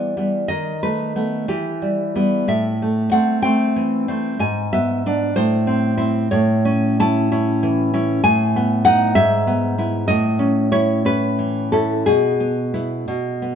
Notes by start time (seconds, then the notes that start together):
Already playing: E3 G3 B3 D5
0.17 G3 B3
0.48 D#3 D#5
0.83 A3 B4
1.16 A3 B3
1.48 E3 G4
1.82 G3
2.15 G3 B3
2.48 A2 E5
2.82 A3
3.12 A3 C4 F#5
3.42 A3 C4 G5
3.76 E3
4.08 A3 C4
4.39 G#2 G#5
4.73 B3 E5
5.06 B3 D4
5.36 A2 C5
5.67 C4
5.97 C4 E4
6.31 A2 C#5
6.65 C#4
7.00 C#4 E4 A5
7.32 C#4 E4
7.63 E3
7.94 C#4 E4
8.23 A2 G#5
8.56 B3
8.85 B3 D#4 F#5
9.15 G#2 E5
9.47 B3
9.78 B3 E4
10.08 A2 D#5
10.39 C#4
10.72 C#4 E4 C#5
11.05 C#4 E4 B4
11.39 E3
11.72 C#4 E4 A4
12.06 B2 G#4
12.40 B3
12.74 B3 E4
13.08 B2
13.42 B3